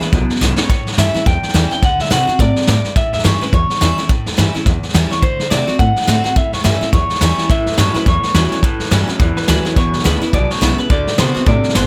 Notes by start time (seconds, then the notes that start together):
Already playing: E2 C#3
0.01 B3 E4 B4, muted upright bass stroke, snare
0.13 B1 E2 F#2 B2, kick, snare
0.30 muted upright bass stroke, snare
0.36 snare
0.41 B1 E2 G#2 C#3, snare, hi-hat pedal
0.58 C#5, snare
0.70 A1 A2 C#5, kick, snare
0.86 E2, snare
0.92 snare
0.98 G2 E3 G3 C#4 E4 E5, snare, hi-hat pedal
1.14 C#4 E4, muted upright bass stroke, snare
1.26 E2 G5, kick, snare
1.43 muted upright bass stroke, snare
1.49 snare
1.54 E2 E3 G3 C#4 E4, snare, hi-hat pedal
1.71 C#4 E4 G5, snare
1.82 D2 D3 F#5, kick, snare
1.99 A2 E5, snare
2.05 snare
2.10 C3 D3 A3 C4 F#4 F#5, snare, hi-hat pedal
2.27 C4 F#4, muted upright bass stroke, snare
2.39 A2 C3 D5, kick, snare
2.56 muted upright bass stroke, snare
2.62 snare
2.67 G2 A2 D5, snare, hi-hat pedal
2.84 muted upright bass stroke, snare
2.96 A1 A2 E5, kick, snare
3.13 E2 E5, snare
3.19 snare
3.24 G2 E3 G3 C#4 E4 C#5, snare, hi-hat pedal
3.41 C#4 E4 B4, muted upright bass stroke, snare
3.53 E2 C#5, kick, snare
3.70 snare
3.75 snare
3.81 E2 E3 G3 C#4 E4, snare, hi-hat pedal
3.98 C#4 E4, muted upright bass stroke, snare
4.09 A1 A2, kick, snare
4.26 E2, snare
4.32 snare
4.37 G2 E3 G3 C#4 E4, snare, hi-hat pedal
4.55 C#4 E4, muted upright bass stroke, snare
4.66 E2, kick, snare
4.83 muted upright bass stroke, snare
4.89 snare
4.94 E2 E3 G3 C#4 E4, snare, hi-hat pedal
5.10 C#4 E4 C#5, muted upright bass stroke, snare
5.22 D2 D3 C5, kick, snare
5.39 A2, snare
5.45 snare
5.50 C3 D3 A3 C4 F#4 D5, snare, hi-hat pedal
5.67 C4 F#4, muted upright bass stroke, snare
5.79 A2 F#5, kick, snare
5.96 muted upright bass stroke, snare
6.02 snare
6.07 A2 D3 A3 C4 F#4, snare, hi-hat pedal
6.24 C4 F#4 F#5, muted upright bass stroke, snare
6.36 A1 A2 E5, kick, snare
6.53 E2 C#5, snare
6.59 snare
6.64 G2 E3 G3 C#4 E4 E5, snare, hi-hat pedal
6.81 C#4 E4, muted upright bass stroke, snare
6.93 E2 C#5, kick, snare
7.10 muted upright bass stroke, snare
7.15 snare
7.21 E2 E3 G3 C#4 E4 C#5, snare, hi-hat pedal
7.38 snare
7.49 A1 A2 E3 E5, kick, snare
7.66 E2, snare
7.72 snare
7.78 G2 A2 E3 F#3 G3 C#4 E4 C#5, snare, hi-hat pedal
7.94 C#4 E4 B4, muted upright bass stroke, snare
8.06 E2 A2 E3 C#5, kick, snare
8.23 muted upright bass stroke, snare
8.29 snare
8.34 E2 A2 E3 F#3 G3 C#4 E4, snare, hi-hat pedal
8.51 C#4 E4, muted upright bass stroke, snare
8.63 A1 A2 E3, kick, snare
8.80 E2, snare
8.86 snare
8.91 G2 A2 E3 F#3 G3 C#4 E4, snare, hi-hat pedal
9.08 C#4 E4, muted upright bass stroke, snare
9.19 E2 A2 E3, kick, snare
9.37 B4, muted upright bass stroke, snare
9.42 snare
9.48 D2 A2 E3 F#3 G3 C#4 E4 B4, snare, hi-hat pedal
9.65 C#4 E4, muted upright bass stroke, snare
9.76 E1 E2 B2 C#5, kick, snare
9.93 B1, snare
9.99 snare
10.04 D2 E2 C#3 D3 G#3 B3 E4 B4, snare, hi-hat pedal
10.21 B3 E4, muted upright bass stroke, snare
10.33 B1 E2 B2 D5, kick, snare
10.50 C#5, snare
10.56 snare
10.61 B1 E2 C#3 D3 G#3 B3 E4, snare, hi-hat pedal
10.78 B3 E4 B4, muted upright bass stroke, snare
10.90 D2 D3 A3 D5, kick, snare
11.07 A2, snare
11.13 snare
11.18 C3 D3 A3 B3 C4 F#4 C5, snare, hi-hat pedal
11.35 C4 F#4, muted upright bass stroke, snare
11.46 A2 C3 D3 A3 D5, kick, snare
11.64 muted upright bass stroke, snare
11.69 snare
11.75 G1 B2 D3 B3 C5, snare, hi-hat pedal